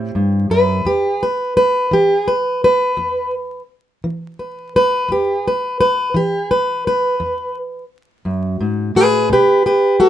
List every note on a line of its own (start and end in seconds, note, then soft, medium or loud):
0.00 0.15 A2 medium
0.00 0.82 C4 soft
0.00 0.83 G4 medium
0.15 0.50 G2 medium
0.50 0.85 F#2 medium
0.50 0.86 B4 loud
0.85 1.49 E2 medium
0.85 1.22 G4 medium
1.23 1.56 B4 medium
1.57 1.92 B4 loud
1.91 2.55 E3 medium
1.91 2.28 G4 medium
2.28 2.63 B4 medium
2.64 3.34 B4 loud
2.97 3.61 E2 medium
4.04 4.67 E3 medium
4.39 4.76 B4 soft
4.76 5.10 B4 loud
5.08 5.72 E2 medium
5.08 5.46 G4 medium
5.47 5.79 B4 medium
5.80 6.15 B4 loud
6.14 6.78 E3 medium
6.14 6.51 G4 medium
6.51 6.86 B4 medium
6.87 7.57 B4 medium
7.20 7.83 E2 medium
8.25 8.60 F#2 medium
8.61 8.95 G#2 medium
8.95 9.31 A2 medium
8.95 9.31 G#4 medium
8.95 9.31 B4 medium
9.30 9.94 B2 medium
9.30 9.65 G4 medium
9.30 9.66 B4 loud
9.66 10.01 G4 medium
9.66 9.99 B4 medium
10.00 10.06 F#4 medium
10.00 10.09 A4 loud